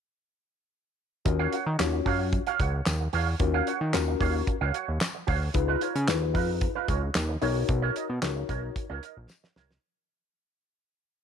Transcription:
1.25 D#2 C#4 F4 F#4 A#4, muted clean electric guitar stroke, kick, closed hi-hat
1.39 F#4 C#5 F5
1.52 F#4 C#5 F#5, closed hi-hat
1.66 D#3, muted clean electric guitar stroke
1.79 D#2 C#4 F4 F#4 C#5, muted clean electric guitar stroke, snare, clap, closed hi-hat, tambourine
1.93 muted clean electric guitar stroke
2.06 F#2 F#4 C#5 F5, kick, open hi-hat
2.20 muted clean electric guitar stroke
2.33 muted clean electric guitar stroke, kick, closed hi-hat
2.47 F#4 C#5 F5, closed hi-hat
2.59 C#2 F#4 C#5 F#5, kick, closed hi-hat
2.74 muted clean electric guitar stroke
2.86 D#2, snare, clap, closed hi-hat, tambourine
3.01 muted clean electric guitar stroke
3.13 E2 F#4 C#5 F5, open hi-hat
3.27 muted clean electric guitar stroke
3.40 D#2 C#4 F4 F#4 A#4, muted clean electric guitar stroke, kick, closed hi-hat
3.54 F#4 C#5 F5
3.67 F#4 C#5 F#5, closed hi-hat
3.81 D#3, muted clean electric guitar stroke
3.93 D#2 C#4 F4 F#4 A#4, muted clean electric guitar stroke, snare, clap, closed hi-hat, tambourine
4.08 muted clean electric guitar stroke
4.20 D#2 F#4 C#5 F5, kick, open hi-hat
4.34 muted clean electric guitar stroke
4.47 muted clean electric guitar stroke, kick, closed hi-hat
4.61 C#2 F#4 C#5 F5
4.74 F#4 C#5 F#5, closed hi-hat
4.88 D#2, muted clean electric guitar stroke
5.01 snare, clap, closed hi-hat, tambourine
5.15 muted clean electric guitar stroke
5.27 D2 F#4 C#5 F5, kick, open hi-hat
5.41 muted clean electric guitar stroke
5.54 C#2 D#4 F4 G#4 B4, muted clean electric guitar stroke, kick, closed hi-hat
5.68 D#4 F4 B4
5.81 D#4 F4 C#5, closed hi-hat
5.95 C#3, muted clean electric guitar stroke, closed hi-hat
6.07 D#2 D#4 E4 G#4 B4, muted clean electric guitar stroke, snare, clap, closed hi-hat, tambourine
6.14 F4
6.22 muted clean electric guitar stroke
6.34 F2 D#4 F4 B4, kick, open hi-hat
6.49 muted clean electric guitar stroke
6.61 muted clean electric guitar stroke, kick, closed hi-hat
6.75 D#4 F4 B4
6.88 C#2 D#4 F4 C#5, kick, closed hi-hat
7.02 muted clean electric guitar stroke
7.15 D#2, snare, clap, closed hi-hat, tambourine
7.29 muted clean electric guitar stroke
7.41 B1 D#4 F#4 A#4 C#5, open hi-hat
7.56 muted clean electric guitar stroke
7.68 B1, muted clean electric guitar stroke, kick, closed hi-hat
7.82 D#4 A#4 C#5
7.95 D#4 A#4 D#5, closed hi-hat
8.09 B2, muted clean electric guitar stroke
8.22 C#2 D#4 F#4 A#4 C#5, muted clean electric guitar stroke, snare, clap, closed hi-hat, tambourine
8.36 muted clean electric guitar stroke
8.49 B1 D#4 A#4 C#5, kick, closed hi-hat
8.63 muted clean electric guitar stroke
8.76 muted clean electric guitar stroke, kick, closed hi-hat
8.89 C#2 D#4 A#4 C#5
9.03 D#4 A#4 D#5, closed hi-hat
9.16 A#1, muted clean electric guitar stroke
9.29 snare, tambourine
9.43 muted clean electric guitar stroke, snare
9.56 C2 D#4 A#4 C#5, snare
9.71 muted clean electric guitar stroke, snare

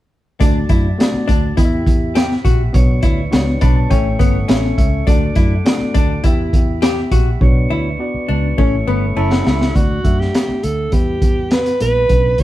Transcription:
0.40 D2 A3 D4 F#4 D5 A5, kick, closed hi-hat
0.69 F#2 E4, kick, closed hi-hat
0.98 A3 D4 F#4 D5, snare, closed hi-hat
1.14 muted fingered electric bass stroke
1.28 D2 D4, kick, closed hi-hat
1.57 E2 B3 E4 G4 D#5 E5 B5, kick, closed hi-hat
1.65 E5
1.86 E2, kick, closed hi-hat
2.15 G4, snare, closed hi-hat
2.32 snare
2.45 A#1 F#4, kick, closed hi-hat
2.73 B1 B3 D4 F#4 B4 C#5 C#6, kick, closed hi-hat
3.03 D2 E4, kick, closed hi-hat
3.31 C#2 B3 D4 F#4 C#5, snare, closed hi-hat
3.61 B1 D4 B5, kick, closed hi-hat
3.76 A5
3.90 A1 A3 C#4 E4 A4 C#5 E5 G5, kick, closed hi-hat
4.19 G1 B3 F#5, kick, closed hi-hat
4.48 A1 C#4 E5, snare, closed hi-hat
4.78 C#2 E5, kick, closed hi-hat
5.07 D2 A3 D4 F#4 D5 F#5 D6, kick, closed hi-hat
5.35 F#2 E4, kick, closed hi-hat
5.64 A3 D4 F#4 D5, snare, closed hi-hat
5.80 muted fingered electric bass stroke
5.94 D2 D4, kick, closed hi-hat
6.24 E2 B3 E4 G4 E5 B5, kick, closed hi-hat
6.53 E2, kick, closed hi-hat
6.82 G4, snare, closed hi-hat
7.11 A#1 F#4, kick, closed hi-hat
7.41 B1 B3 D4 F#4 B4 C#5 C#6, kick
7.70 D2 E4
7.99 B3 D4 F#4 D5
8.14 muted fingered electric bass stroke
8.28 C#2 D4
8.57 A1 A3 C#4 E4 A4 C#5 E5, kick
8.87 G1 B3 B5
9.17 F#1 C#4 E4 A5
9.31 F#5, snare
9.46 C#2 E5, snare
9.61 snare
9.74 D2 A3 D4 F#4 D5, kick, closed hi-hat
10.03 F#2 A3 D4 E5 F#5, kick, closed hi-hat
10.20 G4, snare
10.35 snare, closed hi-hat
10.49 muted fingered electric bass stroke
10.63 D2 A4, closed hi-hat
10.91 E2 G3 B3 E4 G4 B4, kick, closed hi-hat
11.22 E2, kick, closed hi-hat
11.51 B4, snare, closed hi-hat
11.66 snare, closed hi-hat
11.80 A#1 G3 B3 E4 B4, closed hi-hat
12.08 B1 F#3 C#4 D4 B4, kick, closed hi-hat
12.37 D2 F#3 C#4 D4 F#4, kick, closed hi-hat

